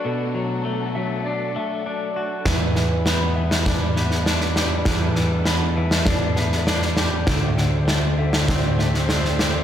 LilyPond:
<<
  \new Staff \with { instrumentName = "Clean electric guitar" } { \time 4/4 \key e \minor \tempo 4 = 100 a'4 r8 e''8 d''8 e''8 d''8 d''8 | b'4 r8 e''8 d''8 e''8 d''8 d''8 | b'4 r8 e''8 d''8 e''8 d''8 d''8 | a'4 r8 e''8 d''8 e''8 d''8 d''8 | }
  \new Staff \with { instrumentName = "String section" } { \time 4/4 \key e \minor << { a'1 | b'1 | a'1 | c''1 | } \\ { <a d' fis'>1 | <g d' e'>1~ | <g d' e'>1 | <a d' g'>1 | } >> }
  \new Staff \with { instrumentName = "Clean electric guitar" } { \time 4/4 \key e \minor <b, a d' fis'>8 fis8 a8 fis8 d'8 a8 d'8 fis'8 | e8 e8 b8 e8 d'8 b8 d'8 g'8 | e8 e8 b8 e8 d'8 b8 d'8 g'8 | d8 d8 a8 d8 c'8 a8 c'8 g'8 | }
  \new Staff \with { instrumentName = "Picked electric bass" } { \clef bass \time 4/4 \key e \minor r1 | e,1 | e,1 | d,1 | }
  \new DrumStaff \with { instrumentName = "Drums" } \drummode { \time 4/4 r4 r4 r4 r4 | <bd sn>8 sn8 sn8. sn16 <bd sn>8 sn16 sn16 sn16 sn16 sn8 | <bd sn>8 sn8 sn8. sn16 <bd sn>8 sn16 sn16 sn16 sn16 sn8 | <bd sn>8 sn8 sn8. sn16 <bd sn>8 sn16 sn16 sn16 sn16 sn8 | }
>>